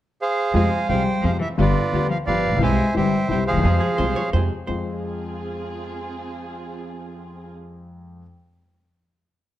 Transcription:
0.22 G#4 C5 F5
0.52 F2 C3 F3 G#3 C4 F4 G#4 C5 F5 G#5
0.88 C2 C3 F3 G3 G#3 C4 F4 G#4 C5 G5
1.21 F2 C3 F3 G#3 C4 F4 G#4 F5
1.39 E3 E5
1.56 G1 G2 D3 G3 B3 F4 G4
1.60 F4 B4 D5
1.92 D2 D3 G3 B3 F4 G4
2.08 F3 F5
2.26 G1 G2 D3 F3 G3 B3 F4 G4 B4 D5 F5
2.49 A1
2.53 A#1 B1
2.58 B1 C2 C3 E3 G3 G#3 C4 E4
2.62 G4 C5 E5 G#5
2.94 G1 G2 C3 E3 G3 C4 E4 G4 C5 E5 G5
3.28 C2 C3 E3 G3 C4 E4 G4 G5
3.46 F3 G#4 C5 F5
3.51 D2 D#2
3.57 D#2 E2
3.63 F2 C3 F3 G#3 C4 F4 G#4
3.80 G#4
3.98 C2 C3 F3 G#3 C4 F4 G#4 C5
4.16 C#5
4.33 F2 C3 F3 G#3 C4 F4 G#4 C5
4.67 F2 G#3 C4 F4 G#4 C5

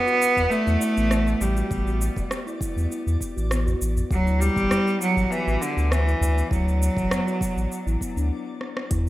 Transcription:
Already playing: B3 D5
0.07 F#4, shaker
0.22 shaker
0.37 E2, kick, shaker
0.51 A3, shaker
0.66 E2 E4, shaker
0.80 E4, shaker
0.96 A1 B3, shaker
1.11 cross-stick, shaker
1.27 shaker
1.41 A1 G3, udu, shaker
1.56 F#4, shaker
1.71 A1 B3, kick, shaker
1.87 F#4, shaker
2.01 shaker
2.16 E1, kick, shaker
2.31 cross-stick, shaker
2.47 E4, shaker
2.61 E4, kick, shaker
2.76 E2 B3, shaker
2.91 E4, shaker
3.07 E2, shaker
3.21 kick, shaker
3.36 A1 F#4, shaker
3.50 B3, cross-stick, shaker
3.66 F#4, udu, shaker
3.81 A1, shaker
3.97 udu, shaker
4.11 D2 F#3, kick, shaker
4.26 E4, shaker
4.40 G3 E4, shaker
4.56 A1 B3, kick, shaker
4.70 E4, cross-stick, udu, shaker
4.87 shaker
5.01 F#3, shaker
5.16 A1 F#4, kick, shaker
5.30 E3 B3, shaker
5.46 A1 F#4, shaker
5.61 D3, shaker
5.77 D2, shaker
5.92 E3, cross-stick, shaker
6.06 E4, shaker
6.20 D2 E4, udu, shaker
6.36 B3, shaker
6.51 D2 F#3 E4, kick, shaker
6.68 shaker
6.83 shaker
6.97 A1 F#4, kick, shaker
7.11 B3, cross-stick, udu, shaker
7.27 F#4, shaker
7.41 kick, shaker
7.57 A1, shaker
7.72 shaker
7.86 A1 E4, shaker
8.01 B3, kick, shaker
8.16 D2 D4, shaker
8.61 cross-stick
8.77 cross-stick
8.91 E2 E4 D5, kick, closed hi-hat, shaker

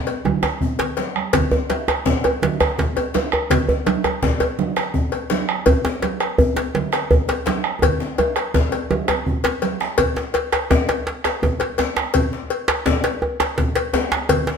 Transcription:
0.07 cowbell, djembe tone, high conga
0.25 bombo rim, high conga, djembe tone, low conga
0.43 bombo rim, cowbell, djembe slap, djembe tone, high conga
0.61 bombo low, high conga, djembe bass
0.79 bombo rim, cowbell, djembe slap, djembe tone, low conga
0.97 cowbell, djembe slap, high conga
1.16 bombo rim, high conga
1.33 bombo low, cowbell, djembe slap, djembe bass, low conga
1.51 djembe slap, djembe tone, djembe bass
1.70 bombo rim, cowbell, djembe slap, high conga
1.88 bombo rim, cowbell, djembe tone
2.06 bombo low, djembe slap, djembe tone, djembe bass
2.24 bombo rim, cowbell, djembe tone
2.42 djembe slap, high conga, low conga
2.60 bombo rim, cowbell, djembe slap, high conga, djembe bass
2.78 bombo rim, bombo low, djembe slap, djembe bass
2.96 bombo rim, cowbell, djembe tone
3.14 cowbell, djembe slap, high conga, djembe tone
3.32 bombo rim, djembe tone
3.50 bombo rim, bombo low, cowbell, djembe slap, low conga, djembe bass
3.69 djembe slap, djembe tone, djembe bass
3.86 bombo rim, cowbell, djembe slap, high conga
4.04 bombo rim, cowbell, djembe tone
4.23 bombo low, djembe slap, djembe tone, djembe bass
4.40 bombo rim, cowbell, djembe tone
4.59 high conga, low conga
4.76 bombo rim, cowbell, djembe slap, high conga
4.94 bombo rim, bombo low, djembe slap, djembe bass
5.12 bombo rim, cowbell, djembe tone
5.30 cowbell, djembe slap, high conga
5.49 bombo rim
5.66 bombo rim, bombo low, cowbell, djembe bass, low conga
5.85 djembe slap, djembe tone
6.02 bombo rim, cowbell, djembe slap, high conga
6.20 bombo rim, cowbell
6.38 bombo low, djembe bass
6.56 bombo rim, cowbell, djembe slap, djembe tone
6.75 djembe slap, high conga, low conga
6.92 bombo rim, cowbell, djembe slap, high conga
7.10 bombo rim, bombo low, djembe slap, djembe bass
7.28 bombo rim, cowbell, djembe slap, djembe tone
7.46 cowbell, djembe slap, high conga
7.64 bombo rim
7.82 bombo low, cowbell, djembe tone, high conga, djembe bass, low conga
8.00 bombo rim, djembe slap, djembe tone, high conga
8.18 cowbell, high conga, djembe tone
8.36 bombo rim, cowbell, djembe slap
8.54 bombo rim, bombo low, djembe slap, djembe tone, high conga, djembe bass
8.72 bombo rim, cowbell, djembe tone, high conga
8.90 djembe slap, high conga, djembe tone, low conga
9.08 bombo rim, cowbell, djembe tone, djembe bass
9.26 bombo low, high conga, djembe bass
9.44 bombo rim, cowbell, djembe slap, high conga, djembe bass
9.62 bombo rim, cowbell, djembe slap, high conga
9.80 bombo rim, djembe slap
9.98 bombo rim, bombo low, cowbell, djembe tone, djembe bass
10.16 djembe slap
10.34 cowbell, djembe slap
10.52 bombo rim, cowbell, djembe slap
10.70 bombo rim, bombo low, djembe slap, djembe tone, djembe bass
10.89 bombo rim, cowbell, djembe slap
11.07 djembe slap
11.24 bombo rim, cowbell, djembe slap
11.42 bombo low, djembe slap, djembe tone, djembe bass
11.60 cowbell, djembe slap
11.78 bombo rim, cowbell, djembe slap, djembe tone
11.96 bombo rim, djembe slap
12.14 bombo rim, bombo low, cowbell, djembe bass
12.33 djembe slap
12.50 cowbell, djembe slap
12.68 bombo rim, cowbell, djembe slap
12.86 bombo rim, bombo low, djembe slap, djembe tone
13.04 bombo rim, cowbell, djembe slap
13.22 djembe tone
13.40 bombo rim, cowbell, djembe slap
13.58 bombo low, djembe slap, djembe bass
13.75 cowbell, djembe slap
13.93 bombo rim, cowbell, djembe slap, djembe tone
14.12 bombo rim, djembe slap
14.29 bombo low, cowbell, djembe slap, djembe bass, low conga
14.47 djembe slap

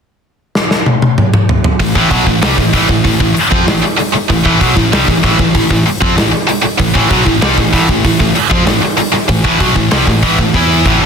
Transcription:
0.55 snare
0.71 snare
0.86 high tom
1.02 high tom
1.18 mid tom
1.34 mid tom
1.49 floor tom
1.64 floor tom
1.80 A1 A2 E3, kick, open hi-hat
1.95 A1 A2 E3, kick
2.10 B1 B2 F#3, kick, open hi-hat
2.27 A1 A2 E3, kick
2.42 C2 C3 G3, snare, open hi-hat
2.57 A1 A2 E3, kick, snare
2.73 A1 A2 E3, kick, open hi-hat
2.89 A1 A2 E3, kick
3.04 A1 A2 E3, kick, open hi-hat
3.20 A1 A2 E3, kick
3.35 muted distorted electric guitar stroke, muted picked electric bass stroke, open hi-hat
3.51 F2 F3 C4, kick
3.67 A1 A2 E3, snare, open hi-hat
3.82 muted distorted electric guitar stroke, muted picked electric bass stroke
3.98 muted distorted electric guitar stroke, muted picked electric bass stroke, open hi-hat
4.14 muted distorted electric guitar stroke, muted picked electric bass stroke
4.30 A1 A2 E3, kick, open hi-hat
4.45 A1 A2 E3, kick
4.60 B1 B2 F#3, kick, open hi-hat
4.76 A1 A2 E3, kick
4.92 C2 C3 G3, snare, open hi-hat
5.08 A1 A2 E3, kick, snare
5.23 A1 A2 E3, kick, open hi-hat
5.38 A1 A2 E3, kick
5.55 A1 A2 E3, kick, open hi-hat
5.70 A1 A2 E3, kick
5.86 muted distorted electric guitar stroke, muted picked electric bass stroke, open hi-hat
6.01 F2 F3 C4, kick
6.16 A1 A2 E3, snare, open hi-hat
6.31 muted distorted electric guitar stroke, muted picked electric bass stroke
6.48 muted distorted electric guitar stroke, muted picked electric bass stroke, open hi-hat
6.62 muted distorted electric guitar stroke, muted picked electric bass stroke
6.78 A1 A2 E3, kick, open hi-hat
6.94 A1 A2 E3, kick
7.10 B1 B2 F#3, kick, open hi-hat
7.25 A1 A2 E3, kick
7.42 C2 C3 G3, snare, open hi-hat
7.58 A1 A2 E3, kick, snare
7.73 A1 A2 E3, kick, open hi-hat
7.89 A1 A2 E3, kick
8.04 A1 A2 E3, kick, open hi-hat
8.20 A1 A2 E3, kick
8.35 muted distorted electric guitar stroke, muted picked electric bass stroke, open hi-hat
8.50 F2 F3 C4, kick
8.65 A1 A2 E3, snare, open hi-hat
8.82 muted picked electric bass stroke, muted distorted electric guitar stroke
8.97 muted picked electric bass stroke, muted distorted electric guitar stroke, open hi-hat
9.13 muted distorted electric guitar stroke, muted picked electric bass stroke, snare
9.28 A1 A2 E3, kick, open hi-hat
9.44 A1 A2 E3, kick
9.59 B1 B2 F#3, kick, open hi-hat
9.75 A1 A2 E3, kick
9.91 C2 C3 G3, snare, open hi-hat
10.07 A1 A2 E3, kick
10.23 A1 A2 E3, kick, open hi-hat
10.38 A1 A2 E3, kick
10.54 E2 E3 B3 E4, kick, open hi-hat
10.86 A1 A2 E3, kick, open hi-hat
11.00 G1 G2 D3

